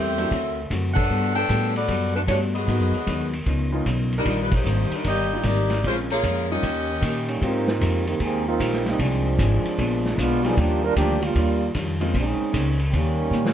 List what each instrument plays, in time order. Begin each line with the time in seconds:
Already playing: upright bass E2, hollow-body jazz guitar A2 G3 C4 E4, saxophone section C4 G4 A4 E5
0.18 grand piano F#3 A3 C4 D4 E4, ride
0.31 upright bass D2, hollow-body jazz guitar D3 A3 C4 F#4, kick, ride
0.70 upright bass F#2, hollow-body jazz guitar D3 A3 C4 F#4, kick, hi-hat pedal, ride
0.94 saxophone section D4 A4 B4 F#5, kick, ride
1.10 upright bass G2, hollow-body jazz guitar G3 B3 F#4 A4
1.36 saxophone section D4 A4 B4 G5
1.49 upright bass A2, hollow-body jazz guitar G3 B3 F#4 A4, kick, hi-hat pedal, ride
1.76 saxophone section B3 F#4 A4 D5, ride
1.88 upright bass F#2, hollow-body jazz guitar G3 B3 F#4 A4, kick, ride
2.15 saxophone section A3 D4 F#4 B4
2.27 upright bass G2, hollow-body jazz guitar G3 B3 F#4 A4, grand piano G3 A3 B3 D4 F#4, saxophone section A3 D4 F#4 C#5, kick, hi-hat pedal, ride
2.55 saxophone section B3 F#4 G#4 D#5, ride
2.65 hollow-body jazz guitar G#2 F#3 B3 D#4, upright bass G#2, grand piano G#3 A#3 B3, kick, ride
2.69 grand piano D#4 F#4
2.80 upright bass F#2
2.92 upright bass D#2, ride
3.06 upright bass D#2, hollow-body jazz guitar G#2 F#3 B3 D#4, kick, hi-hat pedal, ride
3.33 ride
3.46 upright bass C#2, hollow-body jazz guitar C#3 F3 B3 D#4, kick, ride
3.72 grand piano G#3 B3 C#4 D#4 F4
3.86 upright bass B1, hollow-body jazz guitar C#3 F3 B3 D#4, kick, hi-hat pedal, ride
4.12 ride
4.17 saxophone section G3 D4 D#4 A#4
4.25 upright bass A#1, hollow-body jazz guitar D#3 G3 A#3 D4, grand piano G3 A#3 D4 D#4 F4, kick, ride
4.43 saxophone section B4
4.52 saxophone section A#3 D#4 G4 C5, kick, ride
4.64 upright bass G#1, hollow-body jazz guitar D#3 G3 A#3 D4, hi-hat pedal
4.91 saxophone section G3 D4 D#4 A#4, muted upright bass stroke, ride
5.03 upright bass G1, hollow-body jazz guitar D#3 G3 A#3 D4, saxophone section A#3 G4 D5 D#5, kick, ride
5.32 grand piano G3 A#3 D4 D#4 F4
5.43 upright bass G#1, hollow-body jazz guitar D#3 G3 A#3 D4, saxophone section A#3 D#4 G4 D5, kick, hi-hat pedal, ride
5.70 snare, ride
5.83 upright bass A#1, hollow-body jazz guitar A#2 F3 G#3 C#4, grand piano G#3 A#3 C4 C#4 F4, saxophone section G#3 C#4 F4 C5, kick, ride
6.10 saxophone section A#3 F4 G#4 C#5, ride
6.23 upright bass F2, hollow-body jazz guitar A#2 F3 G#3 C#4, kick, hi-hat pedal, ride
6.50 grand piano G3 A#3 C#4 D#4 F4, saxophone section C#4 G4 A#4 D#5
6.61 upright bass D#2, hollow-body jazz guitar D#3 A#3 C#4 G4, kick, ride
7.01 upright bass A#2, hollow-body jazz guitar D#3 A#3 C#4 G4, kick, hi-hat pedal, ride
7.28 trombone section D#3 G3 A#3 C#4, ride
7.41 upright bass G#2, hollow-body jazz guitar G#3 C4 G4 A#4, grand piano G#3 A#3 C4 D#4 G4, trombone section A#3 C4 D#4 F4, kick, ride
7.67 snare
7.81 upright bass F2, hollow-body jazz guitar G#3 C4 G4 A#4, kick, hi-hat pedal, ride
8.07 trombone section D#3 A#3 C4 G4, ride
8.20 upright bass D#2, trombone section D#3 A#3 C4 G#4, hollow-body jazz guitar G#3 C4 G4 A#4, kick, ride
8.47 trombone section A#3 C4 D#4 F4
8.59 upright bass A#1, hollow-body jazz guitar G#3 C4 G4 A#4, kick, hi-hat pedal, ride
8.73 snare
8.86 trombone section G3 A#3 C4 D#4, snare, ride
8.99 upright bass C2, hollow-body jazz guitar F3 C4 D#4 G#4, trombone section F3 G#3 C4 D4, kick, ride
9.38 upright bass G#1, hollow-body jazz guitar F3 C4 D#4 G#4, kick, hi-hat pedal, ride
9.65 ride
9.78 upright bass A#1, hollow-body jazz guitar A#2 G#3 B3 D4, kick, ride
10.05 snare
10.17 upright bass B1, hollow-body jazz guitar A#2 G#3 B3 D4, trombone section G#3 B3 D4 F4, kick, hi-hat pedal, ride
10.44 trombone section F3 B3 D4 G#4, grand piano G3 A#3 D4 D#4 F4, ride
10.57 upright bass D#2, hollow-body jazz guitar D#3 G3 D4 F4, trombone section F3 A#3 D4 G4, kick, ride
10.84 trombone section G3 D4 F4 A#4
10.96 upright bass D2, hollow-body jazz guitar D#3 G3 D4 F4, trombone section F3 A#3 D4 G4, kick, hi-hat pedal, ride
11.22 trombone section G3 A#3 D4 F4, ride
11.35 upright bass D#2, hollow-body jazz guitar D#3 G3 D4 F4, kick, ride
11.74 upright bass F2, hollow-body jazz guitar D#3 G3 D4 F4, kick, hi-hat pedal, ride
12.00 grand piano G#3 A#3 C4 C#4 F4, ride
12.14 upright bass A#1, hollow-body jazz guitar A#3 C#4 G#4 C5, trombone section C4 C#4, kick, ride
12.18 trombone section G#3 D#4
12.39 muted upright bass stroke
12.53 upright bass C#2, hollow-body jazz guitar A#3 C#4 G#4 C5, kick, hi-hat pedal, ride
12.79 ride
12.89 upright bass D#2, trombone section C4, kick
12.93 hollow-body jazz guitar D#3 A#3 C#4 G4, trombone section D#3 G3 A#3 C#4, ride
13.31 upright bass A#2, hollow-body jazz guitar D#3, hi-hat pedal
13.35 hollow-body jazz guitar A#3 C#4 G4
13.45 snare